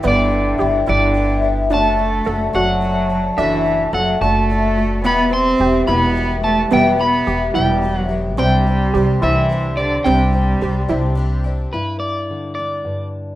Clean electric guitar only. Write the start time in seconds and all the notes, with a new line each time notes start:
0.08 D5
0.90 D5
1.74 A5
2.55 F#5
3.38 E5
3.94 F#5
4.22 A5
5.06 B5
5.34 C6
5.88 B5
6.44 A5
6.73 G5
7.01 B5
7.55 G5
7.97 F#5
8.39 G5
9.23 E5
9.77 D5
10.04 G5
11.73 B4
12.00 D5
12.55 D5